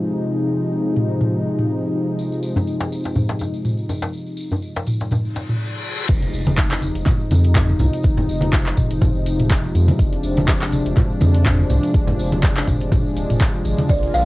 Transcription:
Already playing: C3 F3 G#3 D#4
0.96 mid tom
1.21 mid tom
1.59 mid tom
2.19 tambourine
2.32 tambourine
2.43 tambourine
2.56 tambourine, djembe tone, djembe bass
2.67 tambourine
2.80 tambourine, djembe slap
2.92 tambourine
3.04 tambourine, djembe slap
3.15 mid tom, tambourine, djembe bass
3.29 tambourine, djembe slap
3.39 tambourine, djembe tone
3.54 tambourine
3.65 mid tom, tambourine
3.77 tambourine
3.89 tambourine, djembe tone
4.02 tambourine, djembe slap
4.13 tambourine
4.27 tambourine
4.37 tambourine
4.51 tambourine, djembe tone, djembe bass
4.62 tambourine
4.76 tambourine, djembe slap
4.87 mid tom, tambourine
5.00 tambourine, djembe slap
5.11 mid tom, tambourine, reverse cymbal, djembe tone
5.25 tambourine
5.36 tambourine, djembe slap
5.49 mid tom, tambourine
6.09 F1 C3 F3 G#3 D#4, kick, closed hi-hat, tambourine, crash, impact
6.22 closed hi-hat, tambourine
6.33 F1, tambourine
6.46 closed hi-hat, tambourine, high conga
6.58 kick, clap, closed hi-hat, tambourine
6.71 clap, tambourine
6.82 F1, closed hi-hat, tambourine, high conga
6.95 F1, closed hi-hat, tambourine
7.06 kick, clap, closed hi-hat, mid tom, tambourine, low conga
7.20 tambourine
7.31 F2, closed hi-hat, tambourine, high conga
7.44 closed hi-hat, tambourine
7.55 kick, clap, closed hi-hat, mid tom, tambourine
7.69 tambourine, high conga
7.79 C2, closed hi-hat, tambourine, low conga
7.93 closed hi-hat, tambourine
8.03 F1, kick, closed hi-hat, tambourine
8.17 closed hi-hat, tambourine, high conga, low conga
8.28 F1, tambourine
8.41 closed hi-hat, tambourine, high conga
8.53 kick, clap, closed hi-hat, tambourine
8.65 clap, tambourine
8.77 F1, kick, closed hi-hat, mid tom, tambourine
8.91 F1, closed hi-hat, tambourine
9.02 kick, closed hi-hat, mid tom, tambourine, low conga
9.15 F1, tambourine
9.26 closed hi-hat, tambourine
9.39 closed hi-hat, mid tom, tambourine
9.50 kick, clap, closed hi-hat, tambourine
9.64 tambourine
9.75 F2, closed hi-hat, tambourine
9.88 closed hi-hat, tambourine, high conga
9.99 F1 D4, kick, closed hi-hat, tambourine
10.12 closed hi-hat, tambourine
10.23 F1, tambourine
10.37 closed hi-hat, tambourine, high conga
10.48 kick, clap, closed hi-hat, tambourine
10.62 clap, tambourine
10.72 F1, closed hi-hat, tambourine, high conga
10.86 F1, closed hi-hat, tambourine
10.97 kick, clap, closed hi-hat, mid tom, tambourine, low conga
11.10 tambourine
11.21 F2, closed hi-hat, tambourine, high conga
11.35 closed hi-hat, tambourine
11.46 kick, clap, closed hi-hat, mid tom, tambourine
11.59 tambourine, high conga
11.70 C2, closed hi-hat, tambourine, low conga
11.83 closed hi-hat, tambourine
11.94 F1, kick, closed hi-hat, tambourine
12.07 closed hi-hat, tambourine, high conga, low conga
12.19 F1, tambourine
12.32 closed hi-hat, tambourine, high conga
12.43 kick, clap, closed hi-hat, tambourine
12.57 clap, tambourine
12.67 F1, kick, closed hi-hat, mid tom, tambourine, high conga
12.80 F1, closed hi-hat, tambourine
12.92 kick, closed hi-hat, mid tom, tambourine, low conga
13.06 tambourine
13.16 D#1, closed hi-hat, tambourine
13.30 F1, closed hi-hat, mid tom, tambourine
13.41 kick, clap, closed hi-hat, tambourine
13.54 tambourine
13.65 G#1, closed hi-hat, tambourine
13.78 closed hi-hat, tambourine, high conga
13.89 A#1 D3 A#3 F4 D5, kick, closed hi-hat, tambourine
14.03 closed hi-hat, tambourine
14.14 A#1 F5, tambourine

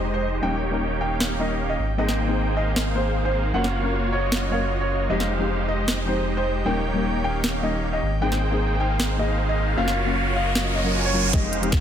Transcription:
Already playing: F1 F3 G#3 C4 D#4 G4 C5 D#5 G5, impact
0.14 C5
0.41 D#1 D#3 G3 A#3 C#4 D#4 G4 A#4 C#5 G5
0.70 G3 A#3 C#4 D#4
0.74 A#4
1.01 A#3 D#4 G4 C#5 F5 G5
1.20 snare
1.39 G3 A#3 C#4 D#4 A#4 D#5
1.69 D#5
1.79 G#1 C4
1.97 G3 A#3 C4 D#4 G#4 C5 D#5 G5
2.09 snare
2.27 A#3 C4 D#4 G#4
2.57 A#3 D#4 G#4 C5 D#5 F5
2.76 snare
2.95 A#3 C4 D#4 G#4 C5
3.25 C5
3.53 F#1 F#3 A#3 C#4 F4 F#4 A#4 C#5 F5 F#5
3.64 snare
3.82 F#3 A#3 C#4 F5
3.86 A#4
4.12 A#3 F4 F#4 C#5 D#5
4.32 snare
4.50 F#3 A#3 C#4 C#5 F5
4.54 A#4
4.81 C#5
5.09 F1 F3 G#3 C4 D#4 G4 C5 D#5 F5 G5
5.20 snare
5.38 F3 G#3 C4 D#4
5.42 G4
5.68 G#3 D#4 G4 C5 D#5
5.88 snare
6.05 F3 G#3 C4 D#4 G4 C5
6.37 C5
6.65 D#1 D#3 G3 A#3 C#4 D#4 G4 A#4 C#5 G5
6.94 G3 A#3 C#4 D#4
6.98 A#4
7.24 A#3 D#4 G4 C#5 F5 G5
7.44 snare
7.62 G3 A#3 C#4 D#4 A#4 D#5
7.93 D#5
8.02 G#1 C4
8.21 G3 A#3 C4 D#4 G#4 C5 G5, riser
8.32 snare
8.50 A#3 C4 D#4 G#4
8.80 A#3 D#4 G#4 C5 F5 G5
9.00 snare
9.18 A#3 C4 D#4 G#4 D#5
9.49 D#5
9.76 F#1 F#3 A#3 C#4 F4 F#4 A#4 C#5 F5
9.88 snare
10.05 F#3 A#3 C#4 A#4 F5
10.36 A#3 F4 F#4 C#5 D#5 F5
10.55 snare
10.75 D#5
10.84 F#3 A#3 C#4 F4 A#4
10.94 A#3 F4 F#4 C#5 G#5
11.05 C#5
11.13 F#3 A#3 C#4 F4 A#4
11.32 F1 F3 G#3 C4 D#4 G4 C5 D#5 F5 G5, kick, snare, closed hi-hat, riser
11.53 closed hi-hat
11.61 F3 G#3 C4 D#4 G4, closed hi-hat
11.72 kick, snare, closed hi-hat

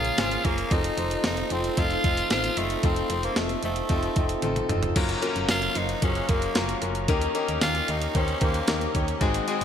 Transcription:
Already playing: A#1 A#2 C#3 G#3 A#3 C#4 F4 G#4 A#4
0.05 closed hi-hat
0.18 G#1 C#4 F4 G#4 C5, snare, closed hi-hat
0.31 closed hi-hat
0.44 F#1 A#3 C#4 F4 G#4 A#4, kick, closed hi-hat
0.58 closed hi-hat
0.71 F1 D#3 A3 C4 D#4 F4 A4, kick, closed hi-hat
0.84 closed hi-hat
0.97 F1 C4 D#4 F4 C5, closed hi-hat
1.11 closed hi-hat
1.24 F1 C4 D#4 F4 A4, snare, closed hi-hat
1.37 closed hi-hat
1.50 F1 C4 D#4 F4 A4, closed hi-hat
1.64 closed hi-hat
1.77 F1 C4 D#4 F4 A4, kick, closed hi-hat
1.90 closed hi-hat
2.04 F1 C4 D#4 F4 A4, kick, closed hi-hat
2.17 closed hi-hat
2.30 A1 C4 D#4 F4 C5, snare, closed hi-hat
2.44 closed hi-hat
2.57 F#1 A3 C4 D#4 F4 A4, closed hi-hat
2.70 closed hi-hat
2.83 F1 C4 D#4 F4 A4, kick, closed hi-hat
2.96 closed hi-hat
3.10 F1 C4 D#4 F4 C5, closed hi-hat
3.23 A#3, closed hi-hat
3.36 F1 A3 C4 D#4 F4 A4, snare, closed hi-hat
3.49 closed hi-hat
3.63 F1 A3 C4 D#4 F4 C5, closed hi-hat
3.76 closed hi-hat
3.89 F1 C4 D#4 F4 A4, kick, closed hi-hat
4.03 closed hi-hat
4.16 F1 C4 D#4 F4 A4, kick, closed hi-hat
4.29 closed hi-hat
4.42 A1 C4 D#4 F4 A4, closed hi-hat, high tom
4.56 closed hi-hat, mid tom
4.69 F1 C4 D#4 F4 A4, closed hi-hat, mid tom
4.83 closed hi-hat, floor tom
4.96 F#1 F#2 C#3 F#3 A#3 C#4 F4 F#4 A#4 F5 F#5 C#6, kick, closed hi-hat, crash
5.09 closed hi-hat
5.22 C#3 F#3 A#3 C#4 F4 F#4 A#4, closed hi-hat
5.36 F#1, closed hi-hat
5.48 F#1 A#3 C#4 F4 F#4 A#4, snare, closed hi-hat, tambourine
5.62 closed hi-hat
5.75 F#1 A#3 C#4 D#4 F4 F#4 C5, closed hi-hat
5.89 closed hi-hat
6.01 F#1 F#2 C#3 A#3 C#4 F4 F#4 G#4, kick, closed hi-hat
6.06 F#3
6.15 closed hi-hat
6.28 F#1 A#3 C#4 F4 F#4 A#4, kick, closed hi-hat
6.42 closed hi-hat
6.55 F#1 A#3 C#4 F4 F#4 A#4, snare, closed hi-hat, tambourine
6.69 closed hi-hat
6.81 F#1 A#3 C#4 F4 F#4 A#4, closed hi-hat
6.95 closed hi-hat
7.08 D#2 D#3 A#3 C#4 D#4 G4 A#4 D#5 G5 C#6, kick, closed hi-hat
7.21 closed hi-hat
7.34 A#3 C#4 D#4 G4 A#4, closed hi-hat
7.48 D#2, closed hi-hat
7.61 D#2 A#3 C#4 D#4 F4 G4 A#4, snare, closed hi-hat, tambourine
7.75 closed hi-hat
7.88 D#2 A#3 C#4 D#4 G4 A#4, closed hi-hat
8.02 closed hi-hat
8.14 D#2 D#3 A#3 C#4 D#4 G4 C5, kick, closed hi-hat
8.19 D#4
8.28 closed hi-hat
8.41 D#2 A#3 C#4 D#4 G4 C5, kick, closed hi-hat
8.54 closed hi-hat
8.67 D#2 A#3 C#4 D#4 G4 A#4, snare, closed hi-hat, tambourine
8.81 closed hi-hat
8.94 D#2 A#3 C#4 D#4 G4 C#5, kick, closed hi-hat
9.08 closed hi-hat
9.21 G#1 G#2 D#3 G#3 C4 D#4 F#4 G#4 F#5 C6, kick, closed hi-hat
9.34 closed hi-hat
9.47 D#3 G#3 C4 D#4 F#4 G#4, closed hi-hat
9.61 G#1, closed hi-hat

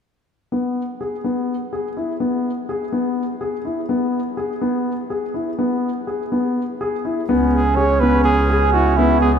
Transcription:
0.52 B3
1.01 G#4
1.24 B3
1.73 G#4
1.97 E4
2.20 B3
2.69 G#4
2.92 B3
3.41 G#4
3.65 E4
3.89 B3
4.37 G#4
4.61 B3
5.10 G#4
5.34 E4
5.59 B3
6.07 G#4
6.32 B3
6.81 G#4
7.05 E4
7.29 C#2 B3 C#4
7.53 G#4
7.76 G#4 C#5
8.00 B3 B4
8.24 G#4
8.50 G#4
8.72 E4 F#4
8.97 B3 E4
9.21 B3 G#4

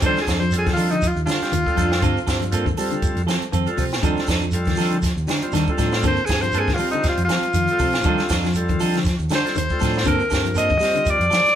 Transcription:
0.01 F2 D#3 G3 C4 D4 D#4 F4 A4, kick, closed hi-hat, shekere
0.06 C5
0.16 snare, shekere
0.21 G#4
0.27 F2 D4 D#4 A4, kick, snare, closed hi-hat, shekere
0.40 F3 C5, shekere
0.51 G3 C4 F4 A4, closed hi-hat, shekere
0.59 G#4
0.66 D#3, kick, snare, closed hi-hat, shekere
0.73 F3 D#4 F4 A4, shekere
0.78 D4, open hi-hat
0.91 D3 D#4, closed hi-hat, shekere
1.02 kick, closed hi-hat, shekere
1.07 F4
1.16 D#2, shekere
1.26 D3 G3 D4 F4 A4, muted clean electric guitar stroke, snare, closed hi-hat, shekere
1.41 G3 C4 F4 G4, muted fingered electric bass stroke, snare, closed hi-hat, shekere
1.52 D#2 D#3, closed hi-hat, shekere
1.66 G3 C4 F4 A4, kick, shekere
1.76 F2 F3 D4 D#4 A4, kick, closed hi-hat, shekere
1.92 snare, shekere
2.02 G2 D3 C4 F4 A4, muted clean electric guitar stroke, kick, closed hi-hat, shekere
2.17 shekere
2.27 G2 C4 F4 A4, kick, snare, closed hi-hat, shekere
2.41 F3, closed hi-hat, shekere
2.52 G3 A#3 C4 F4 A4, closed hi-hat, shekere
2.66 D#3, kick, shekere
2.77 G3 C4 F4 A4, open hi-hat, shekere
2.91 D3, closed hi-hat, shekere
3.02 kick, closed hi-hat, shekere
3.16 F2, closed hi-hat, shekere
3.27 F3 G3 C4 F4 A4, snare, closed hi-hat, shekere
3.41 muted fingered electric bass stroke, closed hi-hat, shekere
3.52 F2 D#3 C4 F4 A4, muted clean electric guitar stroke, closed hi-hat, shekere
3.67 G3 C4 F4 A4, closed hi-hat, shekere
3.78 C3 F3 C4 F4, kick, open hi-hat, shekere
3.92 snare, closed hi-hat, shekere
4.03 F2 D#3 G3 C4 D4 D#4 F4 A4, kick, closed hi-hat, shekere
4.17 snare, shekere
4.27 F2 D4 D#4 A4, kick, snare, closed hi-hat, shekere
4.41 F3, shekere
4.51 G3 C4 F4 A4, closed hi-hat, shekere
4.65 D#3, kick, snare, closed hi-hat, shekere
4.76 F3 D4 D#4 A4, open hi-hat, shekere
4.80 snare
4.91 D3, closed hi-hat, shekere
5.02 kick, snare, closed hi-hat, shekere
5.16 D#2, shekere
5.27 D3 G3 D4 D#4, snare, closed hi-hat, shekere
5.42 G3 C4 F4 C5, muted fingered electric bass stroke, closed hi-hat, shekere
5.52 D#2 D#3 G3 D4 D#4 A4, snare, closed hi-hat, shekere
5.67 G3 C4 F4 A4, kick, shekere
5.78 A2 F3 D4 D#4 A4, kick, snare, closed hi-hat, shekere
5.92 snare, shekere
6.03 G2 D3 A#3 C4 F4 A4, kick, closed hi-hat, shekere
6.07 C5
6.16 shekere
6.26 G2 F4 G#4 A4, kick, closed hi-hat, shekere
6.30 C4, snare
6.41 F3 C5, closed hi-hat, shekere
6.52 G3 A#3 C4 F4 A4, closed hi-hat, shekere
6.59 G#4
6.67 D#3, kick, snare, shekere
6.74 F4, shekere
6.79 G3 C4 F4 A4 C5, open hi-hat
6.91 D3 D#4, closed hi-hat, shekere
7.03 kick, snare, closed hi-hat, shekere
7.09 F4
7.17 F2, closed hi-hat, shekere
7.25 F3 F4 A4
7.29 G3 C4 F4, snare, closed hi-hat, shekere
7.42 muted fingered electric bass stroke, closed hi-hat, shekere
7.54 F2 D#3, closed hi-hat, shekere
7.67 F4, closed hi-hat, shekere
7.71 G3 C4 A4
7.79 C3 F3 C4 F4 A4, kick, open hi-hat, shekere
7.92 snare, closed hi-hat, shekere
8.03 F2 D#3 G3 D4 D#4 A4, kick, closed hi-hat, shekere
8.07 G3 C4 F4 A4
8.18 snare, shekere
8.29 F2 D4 D#4 A4, kick, snare, closed hi-hat, shekere
8.44 F3, snare, shekere
8.54 G3 C4 F4 A4, closed hi-hat, shekere
8.68 D#3, kick, closed hi-hat, shekere
8.80 F3 D4 D#4 A4, open hi-hat, shekere
8.93 D3, snare, closed hi-hat, shekere
9.04 kick, snare, closed hi-hat, shekere
9.19 D#2, shekere
9.29 D3 G3 D4 D#4 A4, snare, closed hi-hat, shekere
9.35 C5
9.44 G3 C4 F4 A4, muted fingered electric bass stroke, snare, closed hi-hat, shekere
9.55 D#2 D#3 C5, closed hi-hat, shekere
9.69 G3 C4 F4 A4, kick, shekere
9.80 A2 F3 D4 D#4 A4, kick, snare, closed hi-hat, shekere
9.94 snare, shekere
10.04 G2 D3 A#3 C4 F4 A4 A#4, kick, closed hi-hat, shekere
10.19 shekere
10.30 G2 C4 F4 A4, kick, snare, closed hi-hat, shekere
10.45 F3, closed hi-hat, shekere
10.55 G3 A#3 C4 F4 A4 A#4 D#5, closed hi-hat, shekere
10.69 D#3, kick, shekere
10.80 G3 C4 F4 A#4, snare, open hi-hat, shekere
10.95 D3, closed hi-hat, shekere
11.06 kick, closed hi-hat, shekere
11.10 D5
11.19 F2, closed hi-hat, shekere
11.30 F3 G3 F4 A4, muted clean electric guitar stroke, snare, closed hi-hat, shekere
11.44 muted fingered electric bass stroke, snare, closed hi-hat, shekere

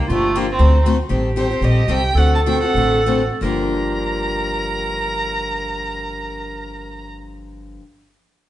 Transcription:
Already playing: A#3
0.08 G1 D3 F3 A3 A#3 D4 F4 G4
0.35 D3 F3 A#3 D4 G4
0.51 C4
0.59 D2 D3 A3 C4 D#4 F#4 A4
0.86 D3 A3 C4 F#4 A4
1.09 A1 D#3 G3 C4 G4 A4
1.36 D#3 G3 C4 G4 A4 C5
1.49 C4 G4 A4
1.61 A#1 D#3 G3 C4 G4 A4 D#5
1.88 C2 D#3 G3 C4 G4 A4 G5
2.15 D2 D3 A3 C4 F#4 A4 F#5
2.35 A5
2.46 D3 A3 C4 F#4 A4 G5
2.61 C4 F#4 A4 F#5
2.74 A1 D3 A3 C4 F#4 A4
3.06 D3 A3 C4 F#4 A4
3.41 G1 G2 D3 F3 A#3 D4 G4 A#4 A#5

